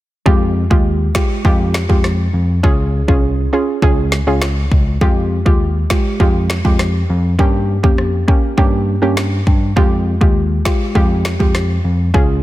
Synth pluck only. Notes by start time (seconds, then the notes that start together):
0.26 G#3 F4 G4
0.70 G#3 F4 G4
1.15 G#3 F4 G4
1.45 G#3 F4 G4
1.89 G#3 F4 G4
2.63 C#4 F4 G#4
3.08 C#4 F4 G#4
3.53 C#4 F4 G#4
3.82 C#4 F4 G#4
4.27 C#4 F4 G#4
5.01 G#3 F4 G4
5.46 G#3 F4 G4
5.90 G#3 F4 G4
6.20 G#3 F4 G4
6.65 G#3 F4 G4
7.39 A#3 C#4 G4
7.83 A#3 C#4 G4
8.28 A#3 C#4 G4
8.57 A#3 C#4 G4
9.02 A#3 C#4 G4
9.76 G#3 F4 G4
10.21 G#3 F4 G4
10.65 G#3 F4 G4
10.95 G#3 F4 G4
11.39 G#3 F4 G4
12.14 C#4 F4 G#4